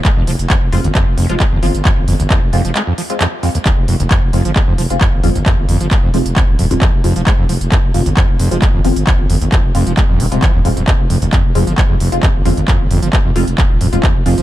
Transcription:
<<
  \new Staff \with { instrumentName = "Synth stab" } { \time 4/4 \key f \minor \tempo 4 = 133 r4. <aes c' f'>16 r4 <aes c' f'>16 r8 <aes c' f'>16 r16 | r4. <aes c' f'>16 r4 <aes c' f'>16 r8 <aes c' f'>16 r16 | r4. <aes c' f'>16 r4 <aes c' f'>16 r8 <aes c' f'>16 r16 | r4. <aes c' f'>16 r4 <aes c' f'>16 r8 <aes c' f'>16 r16 |
r4. <aes c' f'>16 r4 <aes c' f'>16 r8 <aes c' f'>16 r16 | r4. <aes c' f'>16 r4 <aes c' f'>16 r8 <aes c' f'>16 r16 | r4. <aes c' f'>16 r4 <aes c' f'>16 r8 <aes c' f'>16 r16 | r4. <aes c' f'>16 r4 <aes c' f'>16 r8 <aes c' f'>16 r16 | }
  \new Staff \with { instrumentName = "Acid bass" } { \clef bass \time 4/4 \key f \minor aes16 f,16 f16 r16 f,16 r16 f,16 ees,16 f,16 r16 f,16 f16 aes16 f,16 f16 r16 | f,16 r16 f,16 ees,16 f,16 r16 f,16 f16 aes16 f,16 f16 r16 f,16 r16 f,16 ees,16 | f,16 r16 f,16 ees,16 f,16 r16 f,16 f16 aes16 f,16 f16 r16 f,16 r16 f,16 ees,16 | f,16 r16 f,16 f16 aes16 f,16 f16 r16 f,16 r16 f,16 ees,16 f,16 r16 f,16 f16 |
aes16 f,16 f16 r16 f,16 r16 f,16 ees,16 f,16 r16 f,16 f16 aes16 f,16 f16 r16 | f,16 r16 f,16 ees,16 f,16 r16 f,16 f16 aes16 f,16 f16 c16 f16 ees,16 f,16 f,16 | f,16 r16 f,16 ees,16 f,16 r16 f,16 f16 aes16 f,16 f,16 r16 f,16 r16 f,16 ees,16 | f,16 r16 f,16 f16 aes16 f,16 f,16 r16 f,16 r16 f,16 ees,16 f,16 r16 f,16 f16 | }
  \new Staff \with { instrumentName = "FM bass" } { \clef bass \time 4/4 \key f \minor r16 f,,16 f,,16 f,,16 r16 f,,16 f,,16 g,,16 r16 f,,16 f,,16 f,,16 r16 g,,16 g,,16 g,,16 | r16 g,,16 g,,16 g,,16 r16 f,,16 f,,16 f,,16 r2 | r16 f,,16 f,,16 f,,16 r16 f,,16 f,,16 g,,16 r16 f,,16 f,,16 f,,16 r16 g,,16 g,,16 g,,16 | r16 g,,16 g,,16 g,,16 r16 f,,16 f,,16 f,,16 r16 ees,,16 ees,,16 ees,,16 r16 f,,16 f,,16 f,,16 |
r16 f,,16 f,,16 f,,16 r16 f,,16 f,,16 g,,16 r16 f,,16 f,,16 f,,16 r16 g,,16 g,,16 g,,16 | r16 g,,16 g,,16 g,,16 r16 f,,16 f,,16 f,,16 r16 ees,,16 ees,,16 ees,,16 r16 ees,,16 ees,,16 ees,,16 | r16 f,,16 f,,16 f,,16 r16 f,,16 f,,16 g,,16 r16 f,,16 f,,16 f,,16 r16 g,,16 g,,16 g,,16 | r16 g,,16 g,,16 g,,16 r16 f,,16 f,,16 f,,16 r16 ees,,16 ees,,16 ees,,16 r16 f,,16 f,,16 f,,16 | }
  \new DrumStaff \with { instrumentName = "Drums" } \drummode { \time 4/4 <hc hh bd>8 hho16 hh16 <hc hh bd>8 hho16 hh16 <hc hh bd>8 hho16 hh16 <hc hh bd>8 hho16 hh16 | <hc hh bd>8 hho16 hh16 <hc hh bd>8 hho16 hh16 <hc hh>8 hho16 hh16 <hc hh>8 hho16 hh16 | <hc hh bd>8 hho16 hh16 <hc hh bd>8 hho16 hh16 <hc hh bd>8 hho16 hh16 <hc hh bd>8 hho16 hh16 | <hc hh bd>8 hho16 hh16 <hc hh bd>8 hho16 hh16 <hc hh bd>8 hho16 hh16 <hc hh bd>8 hho16 hh16 |
<hc hh bd>8 hho16 hh16 <hc hh bd>8 hho16 hh16 <hc hh bd>8 hho16 hh16 <hc hh bd>8 hho16 hh16 | <hc hh bd>8 hho16 hh16 <hc hh bd>8 hho16 hh16 <hc hh bd>8 hho16 hh16 <hc hh bd>8 hho16 hh16 | <hc hh bd>8 hho16 hh16 <hc hh bd>8 hho16 hh16 <hc hh bd>8 hho16 hh16 <hc hh bd>8 hho16 hh16 | <hc hh bd>8 hho16 hh16 <hc hh bd>8 hho16 hh16 <hc hh bd>8 hho16 hh16 <hc hh bd>8 hho16 hh16 | }
>>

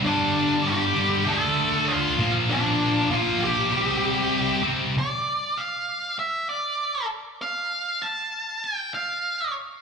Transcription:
<<
  \new Staff \with { instrumentName = "Lead electric guitar" } { \time 4/4 \key c \dorian \tempo 4 = 98 <d' d''>4 <g' g''>4 <a' a''>4 <f' f''>8. r16 | <d' d''>4 <f' f''>8 <g' g''>2 r8 | d''4 f''4 e''8 d''4 r8 | f''4 a''4 g''8 f''4 r8 | }
  \new Staff \with { instrumentName = "Distorted electric guitar" } { \clef bass \time 4/4 \key c \dorian <g, d g>4. <g, d g>8 <d a d'>4. <bes, f bes>8~ | <bes, f bes>4 <bes, f bes>4 <c g c'>4. <c g c'>8 | r1 | r1 | }
>>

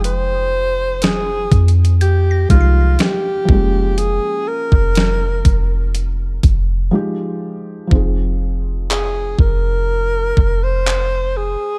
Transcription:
<<
  \new Staff \with { instrumentName = "Synth pluck" } { \time 4/4 \key f \minor \tempo 4 = 61 <c''' ees'''>2 g'''16 bes'''16 c''''4.~ | c''''8 r2. r8 | r1 | }
  \new Staff \with { instrumentName = "Alto saxophone" } { \time 4/4 \key f \minor c''4 aes'8. r16 g'8 f'8 g'4 | aes'8 bes'4. r2 | r4 aes'8 bes'4~ bes'16 c''8. aes'8 | }
  \new Staff \with { instrumentName = "Felt piano" } { \time 4/4 \key f \minor <f aes ees' g''>2~ <f aes ees' g''>8 <f aes ees' g'>4 <f aes bes des'>8~ | <f aes bes des'>2. <f aes ees' g'>4 | <f c' ees' aes'>1 | }
  \new Staff \with { instrumentName = "808-style bass" } { \clef bass \time 4/4 \key f \minor f,,4. f,4 c,8 r8 f,,8~ | f,,16 r8 f,,8. f,,4 f,,8 r4 | f,,4. f,,4 f,,4~ f,,16 r16 | }
  \new DrumStaff \with { instrumentName = "Drums" } \drummode { \time 4/4 hh4 \tuplet 3/2 { <hh sn>16 r16 r16 <hh bd>16 hh16 hh16 } hh8 <hh bd>8 <hh sn>8 bd8 | hh8. bd16 <hh sn>8 <hh bd>8 hh8 <hh bd>8 r4 | bd4 hc8 bd8 r8 bd8 hc4 | }
>>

